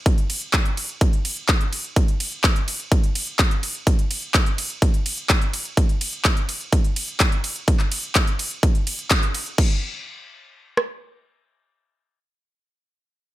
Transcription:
\new DrumStaff \with { instrumentName = "Drums" } \drummode { \time 4/4 \tempo 4 = 126 <hh bd>16 hh16 <hho cymr>16 hh16 <hc hh bd>16 hh16 <hho cymr>16 hh16 <hh bd>16 hh16 <hho cymr>16 hh16 <hc hh bd>16 hh16 <hho cymr>16 hh16 | <hh bd>16 hh16 <hho cymr>16 hh16 <hc hh bd>16 hh16 <hho cymr>16 hh16 <hh bd>16 hh16 <hho cymr>16 hh16 <hc hh bd>16 hh16 <hho cymr>16 hh16 | <hh bd>16 hh16 <hho cymr>16 hh16 <hc hh bd>16 hh16 <hho cymr>16 hh16 <hh bd>16 hh16 <hho cymr>16 hh16 <hc hh bd>16 hh16 <hho cymr>16 hh16 | <hh bd>16 hh16 <hho cymr>16 hh16 <hc hh bd>16 hh16 <hho cymr>16 hh16 <hh bd>16 hh16 <hho cymr>16 hh16 <hc hh bd>16 hh16 <hho cymr>16 hh16 |
<hh bd>16 <hc hh>16 <hho cymr>16 hh16 <hc hh bd>16 hh16 <hho cymr>16 hh16 <hh bd>16 hh16 <hho cymr>16 hh16 <hc hh bd>16 hh16 <hho cymr>16 hh16 | <cymc bd>4 r4 r8 ss8 r4 | r4 r4 r4 r4 | }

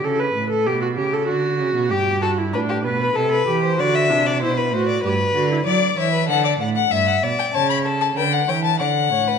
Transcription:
<<
  \new Staff \with { instrumentName = "Violin" } { \time 3/4 \key d \mixolydian \tempo 4 = 96 r2. | r2. | r2. | d''8 e''8 fis''16 d''8 fis''16 e''16 fis''8 g''16 |
a''16 b''8 a''16 g''16 fis''16 g''16 a''16 fis''4 | }
  \new Staff \with { instrumentName = "Violin" } { \time 3/4 \key d \mixolydian r2. | g'8 a'8 b'16 g'8 b'16 a'16 b'8 c''16 | d''16 e''8 d''16 c''16 b'16 c''16 d''16 b'4 | d''8 cis''16 b'16 a'8 fis''8 e''8 d''8 |
cis''8 a'8 b'8 cis''8 d''8 cis''16 b'16 | }
  \new Staff \with { instrumentName = "Viola" } { \time 3/4 \key d \mixolydian a'16 b'8 a'16 g'16 fis'16 g'16 a'16 fis'4 | g'8 fis'16 e'16 d'8 b'8 a'8 g'8 | fis'8 d'8 e'8 fis'8 g'8 fis'16 e'16 | r2. |
r2. | }
  \new Staff \with { instrumentName = "Cello" } { \clef bass \time 3/4 \key d \mixolydian cis8 a,8 b,8 cis8 d8 cis16 b,16 | g,4 a,8 b,8 c8 e8 | d8 c8 b,8 a,8 g,8 d8 | fis8 e8 d8 a,8 g,8 b,8 |
cis4 d8 e8 d8 a,8 | }
>>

